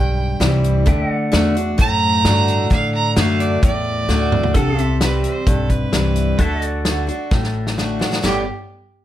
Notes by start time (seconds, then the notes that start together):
Already playing: B1 G2 C5 E5 G5
0.40 C2 E3 G3 C4 E4, snare, closed hi-hat
0.64 closed hi-hat
0.86 D2 D3 A3 E5 G5, kick, closed hi-hat
1.09 F#5, muted upright bass stroke
1.13 D5
1.32 E2 D3 A3 D4 F#4, snare, closed hi-hat
1.55 D4 F#4, closed hi-hat
1.78 F#2 A2 A#5, kick, closed hi-hat
2.24 G2 D3 A3 D4 F#4, snare, closed hi-hat
2.48 closed hi-hat
2.70 A2 D3 F5, kick, closed hi-hat
2.94 A#5
3.16 F#2 D3 A3 D4 F#4 F5, snare, closed hi-hat
3.40 D5, closed hi-hat
3.63 E2 A2 D5, kick, closed hi-hat
4.08 D2 D3 A3 D4 F#4, snare
4.32 mid tom
4.43 floor tom
4.54 C2 C3 D4 A4 F#5, kick, closed hi-hat
4.78 C4 G4 E5, closed hi-hat
5.01 E3 G3 C4 E4 B4, snare, closed hi-hat
5.24 C5, closed hi-hat
5.47 B1 G2 A4, kick, closed hi-hat
5.69 B4, kick, closed hi-hat
5.92 C2 E3 G3 C4 E4, snare, closed hi-hat
6.16 closed hi-hat
6.38 D2 D3 F#4 A4 E5, kick, closed hi-hat
6.62 closed hi-hat
6.66 D5
6.85 D3 A3 D4 F#4, snare, closed hi-hat
7.07 D4 F#4, closed hi-hat
7.31 A1 A2, kick, snare
7.44 snare
7.67 snare
7.77 D3 A3 D4 F#4, snare
7.99 D4 F#4, snare
8.13 snare
8.23 G1 G2 A2 D3 G3 B3 G4, snare, splash